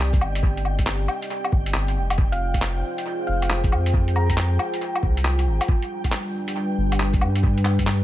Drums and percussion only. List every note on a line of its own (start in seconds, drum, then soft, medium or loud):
0.13 kick loud
0.13 closed hi-hat soft
0.21 low woodblock medium
0.35 closed hi-hat medium
0.43 kick loud
0.57 closed hi-hat soft
0.65 low woodblock soft
0.79 kick medium
0.79 closed hi-hat medium
0.87 clap loud
1.08 low woodblock medium
1.22 closed hi-hat medium
1.30 closed hi-hat soft
1.44 low woodblock medium
1.52 kick loud
1.66 closed hi-hat medium
1.74 clap loud
1.88 closed hi-hat soft
2.10 closed hi-hat medium
2.10 low woodblock medium
2.18 kick loud
2.33 closed hi-hat soft
2.54 kick medium
2.54 closed hi-hat medium
2.62 clap loud
2.98 closed hi-hat medium
3.42 closed hi-hat medium
3.42 low woodblock soft
3.50 clap loud
3.64 kick loud
3.64 closed hi-hat soft
3.72 low woodblock medium
3.86 closed hi-hat soft
3.94 kick loud
4.08 closed hi-hat soft
4.16 low woodblock soft
4.29 kick medium
4.29 closed hi-hat medium
4.37 clap loud
4.59 low woodblock medium
4.74 closed hi-hat medium
4.81 closed hi-hat soft
4.95 low woodblock medium
5.03 kick loud
5.17 closed hi-hat medium
5.25 clap medium
5.39 closed hi-hat soft
5.61 closed hi-hat medium
5.61 low woodblock medium
5.68 kick loud
5.82 closed hi-hat soft
6.04 kick medium
6.04 closed hi-hat medium
6.12 clap loud
6.48 closed hi-hat medium
6.92 closed hi-hat medium
6.92 low woodblock soft
7.00 clap medium
7.13 kick loud
7.13 closed hi-hat soft
7.21 low woodblock medium
7.35 closed hi-hat medium
7.43 kick loud
7.58 closed hi-hat soft
7.65 clap medium
7.65 low woodblock soft
7.79 kick medium
7.79 closed hi-hat medium
7.87 clap loud